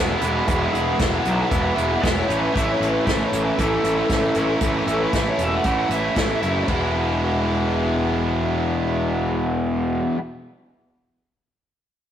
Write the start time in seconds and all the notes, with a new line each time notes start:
Already playing: E1 E3 G#3 B3 E4
0.00 G#4
0.20 E1 E3 G#3 B3 D#4 E4 F#4, closed hi-hat
0.46 E1 E2 B2 E3 G#3 B3 D#4 E4 F#4, kick, closed hi-hat
0.72 E1 E3 G#3 B3 E4 G#4, closed hi-hat
0.98 E1 E3 G#3 B3 E4, kick, snare, closed hi-hat
1.25 B1, closed hi-hat
1.49 E1 E2 B2 E3 G#3 B3 E4, kick, closed hi-hat
1.74 E1 E3 G#3 B3 E4, closed hi-hat
2.01 E1 E3 G#3 B3 E4 E5, kick, closed hi-hat
2.06 snare
2.19 C#5
2.27 A1 A2 E3 A3 C#4 E4, closed hi-hat
2.39 B4
2.53 A1 A2 E3 A3 C#4 E4 E5, kick, closed hi-hat
2.72 C#5
2.80 A1 A3 C#4 E4, closed hi-hat
2.89 B4
3.06 A1 E3 A3 C#4 E4 E5, kick, snare, closed hi-hat
3.25 C#5
3.32 A1, closed hi-hat
3.43 B4
3.58 A1 A2 E3 A3 C#4 E4 A4, kick, closed hi-hat
3.84 A1 A3 C#4 E4, closed hi-hat
4.08 A1 E3 A3 C#4 E4, kick, snare, closed hi-hat
4.35 A1 A3 C#4 E4, closed hi-hat
4.61 A1 A2 E3 A3 C#4 E4, kick, closed hi-hat
4.86 A1 A3 C#4 E4 A4, closed hi-hat
5.00 B4
5.12 A1 E3 A3 C#4 E4, kick, snare, closed hi-hat
5.29 C#5
5.38 E1, closed hi-hat
5.43 E5
5.55 F#5
5.64 A1 A2 E3 A3 C#4 E4, kick, closed hi-hat
5.89 A1 A3 C#4 E4 E5, closed hi-hat
6.15 A1 E3 A3 C#4 E4, kick, snare, closed hi-hat
6.41 F#1 A3 C#4 E4, closed hi-hat
6.66 E1 E2 B2 E3 G#3 B3, kick, crash
6.70 E4